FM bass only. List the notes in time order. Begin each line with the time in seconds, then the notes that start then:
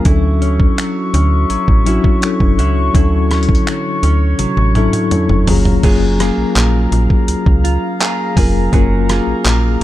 0.05 D2
1.14 D2
1.50 A1
1.68 A1
2.40 F#1
2.58 C#2
2.95 D2
4.03 D2
4.39 A1
4.57 A1
5.29 F#1
5.47 F#1
5.84 F#1
6.38 A#1
6.56 A#1
6.92 A#1
7.28 C#2
7.46 C#2
8.37 F1
8.73 F#1
9.27 A#1
9.45 A#1